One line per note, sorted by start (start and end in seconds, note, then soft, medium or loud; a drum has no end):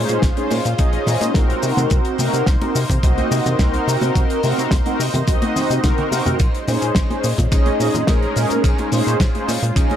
0.00 1.59 G#3 medium
0.00 0.21 C#4 medium
0.00 1.59 C#4 medium
0.00 0.21 D#4 medium
0.00 1.61 F4 medium
0.00 0.21 G#4 medium
0.00 0.21 C5 medium
0.00 9.96 C5 medium
0.09 0.19 A#2 medium
0.09 closed hi-hat medium
0.09 shaker medium
0.22 0.32 A#1 medium
0.22 kick loud
0.22 snare loud
0.22 closed hi-hat medium
0.22 muted conga medium
0.22 shaker soft
0.37 0.53 C#4 medium
0.37 0.53 D#4 medium
0.37 0.53 G#4 medium
0.37 0.53 C5 medium
0.37 closed hi-hat medium
0.37 high conga medium
0.50 0.61 A#2 medium
0.50 open hi-hat loud
0.50 muted conga medium
0.50 shaker medium
0.65 0.75 A#2 loud
0.65 closed hi-hat medium
0.65 shaker medium
0.78 0.98 A#1 medium
0.78 1.31 C#4 medium
0.78 1.32 D#4 medium
0.78 1.32 G#4 medium
0.78 1.32 D#5 loud
0.78 kick loud
0.78 closed hi-hat medium
0.78 shaker medium
0.93 closed hi-hat medium
0.93 muted conga soft
0.93 high conga medium
1.06 1.17 A#2 loud
1.06 snare soft
1.06 open hi-hat loud
1.06 low conga medium
1.06 shaker medium
1.21 1.31 A#2 medium
1.21 closed hi-hat medium
1.21 muted conga medium
1.21 shaker medium
1.34 1.54 A#1 medium
1.34 2.15 C4 medium
1.34 2.16 D#4 medium
1.34 2.16 F#4 medium
1.34 2.16 A#4 loud
1.34 kick loud
1.34 snare loud
1.34 closed hi-hat medium
1.34 high conga medium
1.34 shaker medium
1.50 closed hi-hat medium
1.63 1.73 C3 loud
1.63 6.36 A#3 medium
1.63 8.60 D#4 medium
1.63 open hi-hat loud
1.63 muted conga medium
1.63 shaker medium
1.77 1.86 C3 medium
1.77 closed hi-hat medium
1.77 high conga medium
1.77 low conga medium
1.77 shaker medium
1.90 2.01 C2 loud
1.90 kick loud
1.90 closed hi-hat medium
1.90 muted conga medium
1.90 shaker medium
2.05 closed hi-hat medium
2.18 2.29 C3 loud
2.18 2.45 C4 medium
2.18 2.45 D#4 medium
2.18 2.45 F#4 medium
2.18 2.45 A#4 medium
2.18 open hi-hat loud
2.18 high conga medium
2.18 shaker medium
2.33 2.43 C3 medium
2.33 closed hi-hat medium
2.33 muted conga medium
2.33 shaker medium
2.46 2.57 C2 medium
2.46 kick loud
2.46 snare loud
2.46 closed hi-hat medium
2.46 shaker soft
2.61 2.77 C4 medium
2.61 2.77 D#4 medium
2.61 2.77 F#4 medium
2.61 2.78 A#4 medium
2.61 closed hi-hat medium
2.61 muted conga medium
2.61 high conga medium
2.75 2.85 C3 medium
2.75 open hi-hat loud
2.75 shaker medium
2.90 2.99 C3 loud
2.90 kick medium
2.90 closed hi-hat medium
2.90 low conga medium
2.90 shaker medium
3.03 3.22 C2 medium
3.03 3.56 C4 medium
3.03 3.56 D#4 medium
3.03 3.56 F#4 medium
3.03 3.56 D#5 medium
3.03 kick loud
3.03 closed hi-hat loud
3.03 muted conga medium
3.03 shaker medium
3.18 closed hi-hat medium
3.18 high conga medium
3.31 3.41 C3 loud
3.31 open hi-hat loud
3.31 muted conga medium
3.31 shaker medium
3.46 3.55 C3 medium
3.46 closed hi-hat medium
3.46 low conga medium
3.46 shaker medium
3.59 3.78 C2 medium
3.59 4.40 C4 medium
3.59 4.40 D#4 medium
3.59 4.40 F#4 medium
3.59 4.41 A#4 loud
3.59 kick loud
3.59 snare loud
3.59 closed hi-hat medium
3.59 high conga medium
3.59 shaker medium
3.74 closed hi-hat soft
3.74 muted conga medium
3.88 3.97 C3 loud
3.88 open hi-hat loud
3.88 shaker loud
4.01 4.11 C3 medium
4.01 closed hi-hat medium
4.01 muted conga medium
4.01 high conga medium
4.01 shaker medium
4.15 4.25 C2 loud
4.15 kick loud
4.15 closed hi-hat medium
4.15 shaker soft
4.30 closed hi-hat medium
4.43 4.53 C3 loud
4.43 4.69 C4 medium
4.43 4.69 D#4 medium
4.43 4.70 F#4 medium
4.43 4.70 A#4 medium
4.43 open hi-hat loud
4.43 muted conga medium
4.43 high conga medium
4.43 shaker medium
4.58 4.67 C3 medium
4.58 closed hi-hat medium
4.58 shaker medium
4.71 4.81 C2 medium
4.71 kick loud
4.71 snare loud
4.71 closed hi-hat medium
4.71 muted conga medium
4.71 shaker medium
4.85 5.01 C4 medium
4.85 5.02 D#4 medium
4.85 5.02 F#4 medium
4.85 5.02 A#4 medium
4.85 closed hi-hat medium
4.85 high conga medium
5.00 5.09 C3 medium
5.00 open hi-hat loud
5.00 shaker loud
5.14 5.23 C3 loud
5.14 closed hi-hat medium
5.14 muted conga medium
5.14 low conga medium
5.14 shaker medium
5.27 5.37 C2 medium
5.27 5.80 C4 medium
5.27 5.80 D#4 medium
5.27 5.81 F#4 medium
5.27 5.81 D#5 medium
5.27 kick loud
5.27 closed hi-hat loud
5.27 shaker medium
5.42 closed hi-hat medium
5.42 muted conga medium
5.42 high conga medium
5.55 5.65 C3 loud
5.55 snare soft
5.55 open hi-hat loud
5.55 low conga medium
5.55 shaker medium
5.70 5.79 C3 medium
5.70 closed hi-hat medium
5.70 shaker medium
5.83 5.93 C2 medium
5.83 6.38 C4 medium
5.83 6.38 D#4 medium
5.83 6.38 F#4 medium
5.83 6.38 A#4 loud
5.83 kick loud
5.83 snare loud
5.83 closed hi-hat medium
5.83 high tom medium
5.83 muted conga medium
5.83 high conga medium
5.83 shaker soft
5.98 closed hi-hat medium
5.98 high tom medium
6.12 6.21 C3 loud
6.12 open hi-hat loud
6.12 muted conga medium
6.12 shaker medium
6.25 6.35 C3 medium
6.25 closed hi-hat medium
6.25 mid tom medium
6.25 high conga medium
6.25 low conga medium
6.25 shaker medium
6.39 6.49 A#1 loud
6.39 9.96 G#3 medium
6.39 9.96 C#4 medium
6.39 kick loud
6.39 closed hi-hat medium
6.39 ride medium
6.39 muted conga medium
6.39 shaker soft
6.55 closed hi-hat medium
6.67 6.77 A#2 loud
6.67 6.93 C#4 medium
6.67 6.93 D#4 medium
6.67 6.94 G#4 medium
6.67 6.94 C5 medium
6.67 open hi-hat loud
6.67 muted conga medium
6.67 high conga loud
6.67 shaker medium
6.82 6.91 A#2 medium
6.82 closed hi-hat medium
6.82 shaker medium
6.95 7.06 A#1 medium
6.95 kick loud
6.95 snare loud
6.95 closed hi-hat medium
6.95 ride medium
6.95 shaker medium
7.10 7.26 C#4 medium
7.10 7.26 D#4 medium
7.10 7.26 G#4 medium
7.10 7.26 C5 medium
7.10 closed hi-hat soft
7.10 muted conga medium
7.10 high conga medium
7.24 7.34 A#2 medium
7.24 open hi-hat loud
7.24 shaker medium
7.38 7.47 A#2 loud
7.38 kick medium
7.38 closed hi-hat medium
7.38 muted conga medium
7.38 low conga medium
7.38 shaker medium
7.51 7.71 A#1 medium
7.51 8.04 C#4 medium
7.51 8.05 D#4 medium
7.51 8.05 G#4 medium
7.51 8.05 D#5 medium
7.51 kick loud
7.51 closed hi-hat medium
7.51 ride medium
7.51 shaker medium
7.66 closed hi-hat medium
7.66 high conga loud
7.80 7.90 A#2 medium
7.80 open hi-hat loud
7.80 muted conga medium
7.80 shaker medium
7.94 8.04 A#2 medium
7.94 closed hi-hat medium
7.94 low conga medium
7.94 shaker medium
8.07 8.27 A#1 medium
8.07 8.88 C#4 medium
8.07 8.89 D#4 medium
8.07 8.89 G#4 medium
8.07 8.89 A#4 loud
8.07 kick loud
8.07 snare loud
8.07 closed hi-hat medium
8.07 ride medium
8.07 muted conga medium
8.07 high conga medium
8.07 shaker medium
8.23 closed hi-hat soft
8.36 8.46 A#2 loud
8.36 open hi-hat loud
8.36 shaker medium
8.50 8.60 A#2 medium
8.50 closed hi-hat medium
8.50 muted conga medium
8.50 high conga medium
8.50 shaker medium
8.64 8.74 A#1 loud
8.64 9.96 F4 medium
8.64 kick loud
8.64 closed hi-hat medium
8.64 ride medium
8.64 shaker medium
8.78 closed hi-hat medium
8.78 muted conga medium
8.92 9.02 A#2 loud
8.92 9.18 C#4 medium
8.92 9.18 D#4 medium
8.92 9.18 G#4 medium
8.92 9.18 C5 medium
8.92 open hi-hat loud
8.92 high conga medium
8.92 shaker medium
9.07 9.16 A#2 medium
9.07 closed hi-hat medium
9.07 shaker medium
9.20 9.30 A#1 medium
9.20 kick loud
9.20 snare loud
9.20 closed hi-hat medium
9.20 ride medium
9.20 muted conga medium
9.20 shaker medium
9.34 9.50 C#4 medium
9.34 9.50 D#4 medium
9.34 9.50 G#4 medium
9.34 9.51 C5 medium
9.34 closed hi-hat medium
9.34 high conga medium
9.48 9.58 A#2 medium
9.48 open hi-hat loud
9.48 muted conga medium
9.48 shaker medium
9.63 9.72 A#2 loud
9.63 closed hi-hat medium
9.63 shaker medium
9.75 9.95 A#1 medium
9.75 9.96 C#4 medium
9.75 9.96 D#4 medium
9.75 9.96 G#4 medium
9.75 9.96 D#5 medium
9.75 kick loud
9.75 closed hi-hat loud
9.75 ride medium
9.75 shaker soft
9.90 closed hi-hat medium
9.90 muted conga soft
9.90 high conga medium